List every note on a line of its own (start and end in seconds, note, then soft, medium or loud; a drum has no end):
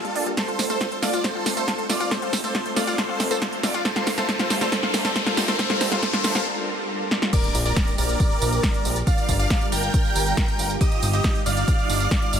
0.00 0.36 A#3 medium
0.00 0.36 D4 medium
0.00 0.29 F4 medium
0.00 0.36 G4 medium
0.00 0.29 A4 loud
0.05 0.08 G3 loud
0.05 closed hi-hat soft
0.16 0.33 A#1 medium
0.16 0.23 D4 loud
0.16 open hi-hat medium
0.26 0.34 G3 medium
0.26 closed hi-hat soft
0.37 3.82 A3 medium
0.37 0.40 A3 loud
0.37 3.82 C4 medium
0.37 7.29 F4 loud
0.37 0.64 A4 medium
0.37 0.64 C5 medium
0.37 kick loud
0.37 snare medium
0.37 closed hi-hat medium
0.37 tambourine soft
0.37 riser medium
0.48 0.55 F4 medium
0.48 closed hi-hat soft
0.59 0.77 F1 loud
0.59 0.66 A3 medium
0.59 snare medium
0.59 open hi-hat loud
0.59 tambourine medium
0.70 0.73 A3 medium
0.70 0.96 A4 medium
0.70 0.96 C5 medium
0.70 closed hi-hat soft
0.70 tambourine soft
0.81 0.88 F4 medium
0.81 kick loud
0.81 snare medium
0.81 closed hi-hat medium
0.81 tambourine soft
0.92 0.99 A3 medium
0.92 closed hi-hat soft
1.02 1.20 F1 medium
1.02 1.05 A3 loud
1.02 1.22 F4 medium
1.02 1.22 D5 medium
1.02 snare medium
1.02 open hi-hat medium
1.02 tambourine medium
1.13 1.21 F4 medium
1.13 closed hi-hat soft
1.13 tambourine soft
1.24 1.27 A3 loud
1.24 1.51 A4 medium
1.24 1.51 C5 medium
1.24 kick loud
1.24 snare medium
1.24 closed hi-hat medium
1.24 tambourine soft
1.35 1.42 F4 medium
1.46 1.64 F1 loud
1.46 1.53 A3 medium
1.46 snare medium
1.46 open hi-hat loud
1.46 tambourine medium
1.57 1.60 A3 medium
1.57 1.83 A4 medium
1.57 1.83 C5 medium
1.57 closed hi-hat soft
1.57 tambourine soft
1.68 1.75 F4 medium
1.68 kick loud
1.68 snare medium
1.68 closed hi-hat medium
1.68 tambourine soft
1.79 1.86 A3 medium
1.79 closed hi-hat soft
1.89 2.07 F1 medium
1.89 1.92 A3 medium
1.89 2.09 F4 medium
1.89 2.09 D5 medium
1.89 snare medium
1.89 open hi-hat loud
1.89 tambourine medium
2.00 2.08 F4 medium
2.00 closed hi-hat soft
2.00 tambourine soft
2.11 2.14 A3 loud
2.11 2.38 A4 medium
2.11 2.38 C5 medium
2.11 kick loud
2.11 snare medium
2.11 closed hi-hat medium
2.11 tambourine soft
2.22 2.29 F4 loud
2.22 closed hi-hat soft
2.33 2.51 F1 loud
2.33 2.40 A3 medium
2.33 kick medium
2.33 snare medium
2.33 open hi-hat loud
2.33 tambourine medium
2.44 2.47 A3 medium
2.44 2.70 A4 medium
2.44 2.70 C5 medium
2.44 closed hi-hat medium
2.44 tambourine soft
2.55 2.62 F4 loud
2.55 kick loud
2.55 snare medium
2.55 closed hi-hat medium
2.55 tambourine soft
2.66 2.73 A3 medium
2.66 closed hi-hat soft
2.76 2.94 F1 medium
2.76 2.79 A3 medium
2.76 2.96 F4 medium
2.76 2.96 D5 medium
2.76 snare medium
2.76 open hi-hat medium
2.76 tambourine medium
2.87 2.95 F4 loud
2.87 closed hi-hat medium
2.87 tambourine soft
2.98 3.01 A3 loud
2.98 3.24 A4 medium
2.98 3.24 C5 medium
2.98 kick loud
2.98 snare medium
2.98 closed hi-hat medium
2.98 tambourine soft
3.09 3.16 F4 loud
3.20 3.38 F1 loud
3.20 3.27 A3 medium
3.20 snare medium
3.20 open hi-hat loud
3.20 tambourine medium
3.31 3.34 A3 loud
3.31 3.57 A4 medium
3.31 3.57 C5 medium
3.31 closed hi-hat medium
3.31 tambourine soft
3.42 3.49 F4 medium
3.42 kick loud
3.42 snare medium
3.42 closed hi-hat medium
3.42 tambourine soft
3.53 3.60 A3 medium
3.53 closed hi-hat soft
3.63 3.81 F1 medium
3.63 3.66 A3 loud
3.63 3.83 F4 medium
3.63 3.83 D5 medium
3.63 snare medium
3.63 open hi-hat medium
3.63 tambourine medium
3.74 3.81 F4 loud
3.74 closed hi-hat soft
3.74 tambourine soft
3.85 7.29 G3 medium
3.85 3.88 A3 loud
3.85 7.29 D4 medium
3.85 7.29 A4 medium
3.85 4.11 A4 medium
3.85 7.30 A#4 medium
3.85 4.11 C5 loud
3.85 kick loud
3.85 snare medium
3.85 closed hi-hat medium
3.85 tambourine soft
3.96 4.03 F4 loud
3.96 snare medium
3.96 closed hi-hat soft
4.07 4.25 G1 loud
4.07 4.14 A3 medium
4.07 snare medium
4.07 open hi-hat loud
4.07 tambourine medium
4.18 4.21 A3 loud
4.18 4.27 A4 medium
4.18 4.27 C5 medium
4.18 snare medium
4.18 closed hi-hat medium
4.18 tambourine soft
4.29 4.31 A3 loud
4.29 4.55 A4 medium
4.29 4.55 C5 loud
4.29 kick loud
4.29 snare medium
4.29 closed hi-hat medium
4.29 tambourine soft
4.39 4.47 F4 loud
4.39 snare medium
4.39 closed hi-hat soft
4.50 4.68 G1 medium
4.50 4.58 A3 medium
4.50 snare medium
4.50 open hi-hat medium
4.50 tambourine medium
4.61 4.64 A3 loud
4.61 4.70 A4 medium
4.61 4.70 C5 medium
4.61 snare medium
4.61 closed hi-hat medium
4.61 tambourine soft
4.72 4.75 A3 loud
4.72 4.98 A4 medium
4.72 4.98 C5 loud
4.72 kick loud
4.72 snare loud
4.72 closed hi-hat medium
4.72 tambourine soft
4.83 4.90 F4 loud
4.83 snare medium
4.94 5.12 G1 loud
4.94 5.01 A3 medium
4.94 snare loud
4.94 open hi-hat loud
4.94 tambourine medium
5.05 5.08 A3 loud
5.05 5.14 A4 medium
5.05 5.14 C5 loud
5.05 snare medium
5.05 closed hi-hat medium
5.05 tambourine soft
5.15 5.18 A3 loud
5.15 5.42 A4 medium
5.15 5.42 C5 loud
5.15 kick loud
5.15 snare medium
5.15 closed hi-hat medium
5.15 tambourine soft
5.26 5.34 F4 loud
5.26 snare medium
5.26 closed hi-hat soft
5.37 5.55 G1 medium
5.37 5.44 A3 medium
5.37 snare loud
5.37 open hi-hat medium
5.37 tambourine medium
5.48 5.51 A3 loud
5.48 5.57 A4 medium
5.48 5.57 C5 medium
5.48 snare medium
5.48 closed hi-hat medium
5.48 tambourine soft
5.59 5.62 A3 loud
5.59 5.79 A4 medium
5.59 5.79 C5 loud
5.59 kick loud
5.59 snare loud
5.59 closed hi-hat medium
5.59 tambourine soft
5.70 5.77 F4 loud
5.70 snare medium
5.70 closed hi-hat soft
5.81 5.98 G1 loud
5.81 5.84 A3 loud
5.81 6.01 A4 medium
5.81 6.01 C5 loud
5.81 kick medium
5.81 snare loud
5.81 open hi-hat loud
5.81 tambourine medium
5.92 5.99 F4 loud
5.92 snare medium
5.92 closed hi-hat medium
5.92 tambourine soft
6.02 6.05 A3 loud
6.02 6.22 A4 medium
6.02 6.23 C5 loud
6.02 kick loud
6.02 snare medium
6.02 closed hi-hat medium
6.02 tambourine soft
6.13 6.21 F4 loud
6.13 snare medium
6.13 closed hi-hat soft
6.24 6.42 G1 medium
6.24 6.27 A3 loud
6.24 6.44 A4 medium
6.24 6.44 C5 loud
6.24 snare loud
6.24 open hi-hat medium
6.24 tambourine medium
6.35 6.42 F4 loud
6.35 snare medium
6.35 closed hi-hat medium
6.35 tambourine soft
7.11 snare medium
7.22 snare loud
7.33 9.05 A#3 medium
7.33 10.77 D4 medium
7.33 9.05 G4 medium
7.33 7.59 A#4 medium
7.33 7.59 D5 loud
7.33 kick loud
7.33 closed hi-hat medium
7.33 crash loud
7.33 tambourine soft
7.33 impact medium
7.44 closed hi-hat soft
7.44 tambourine soft
7.55 7.72 A#1 loud
7.55 open hi-hat loud
7.55 tambourine medium
7.66 7.92 A#4 medium
7.66 7.92 D5 medium
7.66 closed hi-hat medium
7.66 tambourine soft
7.76 kick loud
7.76 snare loud
7.76 closed hi-hat medium
7.76 tambourine soft
7.87 closed hi-hat soft
7.87 tambourine soft
7.98 8.16 A#1 medium
7.98 8.98 A#4 medium
7.98 8.98 D5 loud
7.98 open hi-hat medium
7.98 tambourine medium
8.09 closed hi-hat medium
8.09 tambourine soft
8.20 kick loud
8.20 closed hi-hat medium
8.20 tambourine soft
8.31 tambourine soft
8.42 8.59 A#1 loud
8.42 open hi-hat loud
8.42 tambourine medium
8.53 closed hi-hat medium
8.53 tambourine soft
8.63 kick loud
8.63 snare loud
8.63 closed hi-hat medium
8.63 tambourine soft
8.74 closed hi-hat soft
8.74 tambourine soft
8.85 9.03 A#1 medium
8.85 open hi-hat medium
8.85 tambourine medium
8.96 closed hi-hat medium
8.96 tambourine soft
9.07 10.79 G3 medium
9.07 12.40 F4 medium
9.07 10.79 A#4 loud
9.07 9.33 D5 medium
9.07 9.33 F5 loud
9.07 10.79 A5 medium
9.07 kick loud
9.07 closed hi-hat medium
9.07 tambourine soft
9.18 closed hi-hat soft
9.18 tambourine soft
9.29 9.46 G1 loud
9.29 kick medium
9.29 open hi-hat loud
9.29 tambourine medium
9.39 9.66 D5 medium
9.39 9.66 F5 medium
9.39 closed hi-hat medium
9.39 tambourine soft
9.50 kick loud
9.50 snare loud
9.50 closed hi-hat medium
9.50 tambourine soft
9.61 closed hi-hat soft
9.61 tambourine soft
9.72 9.90 G1 medium
9.72 10.72 A#4 medium
9.72 10.72 G5 loud
9.72 open hi-hat medium
9.72 tambourine medium
9.83 closed hi-hat medium
9.83 tambourine soft
9.94 kick loud
9.94 closed hi-hat medium
9.94 tambourine soft
10.05 tambourine soft
10.16 10.33 G1 loud
10.16 open hi-hat loud
10.16 tambourine medium
10.26 closed hi-hat medium
10.26 tambourine soft
10.37 kick loud
10.37 snare loud
10.37 closed hi-hat medium
10.37 tambourine soft
10.48 closed hi-hat soft
10.48 tambourine soft
10.59 10.77 G1 medium
10.59 open hi-hat loud
10.59 tambourine medium
10.70 closed hi-hat soft
10.70 tambourine soft
10.81 12.40 G3 medium
10.81 12.40 D#4 medium
10.81 11.07 G4 medium
10.81 11.07 D#5 loud
10.81 kick loud
10.81 closed hi-hat medium
10.81 tambourine soft
10.92 closed hi-hat soft
10.92 tambourine soft
11.03 11.20 G1 loud
11.03 open hi-hat loud
11.03 tambourine medium
11.13 11.40 G4 medium
11.13 11.40 D#5 medium
11.13 closed hi-hat medium
11.13 tambourine soft
11.24 kick loud
11.24 snare loud
11.24 closed hi-hat medium
11.24 tambourine soft
11.35 closed hi-hat soft
11.35 tambourine soft
11.46 11.64 G1 medium
11.46 12.40 D5 medium
11.46 12.40 F5 loud
11.46 open hi-hat loud
11.46 tambourine medium
11.57 closed hi-hat medium
11.57 tambourine soft
11.68 kick loud
11.68 closed hi-hat medium
11.68 tambourine soft
11.79 tambourine soft
11.89 12.07 G1 loud
11.89 open hi-hat loud
11.89 tambourine medium
12.00 closed hi-hat medium
12.00 tambourine soft
12.11 kick loud
12.11 snare loud
12.11 closed hi-hat medium
12.11 tambourine soft
12.22 closed hi-hat soft
12.22 tambourine soft
12.33 12.40 G1 medium
12.33 open hi-hat loud
12.33 tambourine medium